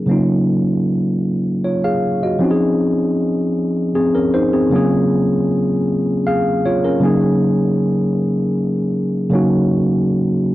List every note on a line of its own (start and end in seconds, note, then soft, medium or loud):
0.00 0.10 G#4 medium
0.06 2.35 C#3 medium
0.06 2.35 F#3 medium
0.06 2.36 A#3 medium
0.06 2.37 C#4 medium
0.11 2.37 D#4 medium
0.11 1.62 F4 medium
1.64 1.82 F4 soft
1.64 1.82 C#5 medium
1.84 2.20 G#4 medium
1.84 2.20 F5 medium
2.23 2.43 F#4 soft
2.23 2.59 D#5 medium
2.39 4.67 F3 medium
2.39 3.91 C4 medium
2.39 3.92 C#4 medium
2.43 3.93 D#4 medium
2.43 2.49 F#4 medium
2.51 3.94 G#4 medium
3.95 4.14 C4 medium
3.95 4.13 G#4 medium
4.15 4.33 C#4 medium
4.15 4.33 A#4 medium
4.34 4.52 D#4 medium
4.34 4.52 C5 medium
4.53 4.90 C4 medium
4.53 4.75 G#4 medium
4.70 6.97 C#3 medium
4.70 6.98 F#3 medium
4.70 6.99 A#3 medium
4.70 6.23 C#4 medium
4.75 6.24 F4 medium
4.75 6.24 G#4 medium
6.27 6.63 G#4 medium
6.27 6.63 F5 medium
6.66 6.83 F4 medium
6.66 6.83 C#5 medium
6.84 7.02 C#4 medium
6.84 7.20 A#4 medium
7.00 9.28 C#3 medium
7.00 9.28 F#3 medium
7.00 9.29 A#3 medium
7.00 9.29 C#4 medium
7.04 9.30 D#4 medium
7.04 9.31 G#4 medium
9.30 10.55 C#3 medium
9.30 10.55 F#3 medium
9.30 10.55 A#3 medium
9.30 10.55 C#4 medium
9.34 10.55 D#4 medium
9.34 10.55 F#4 medium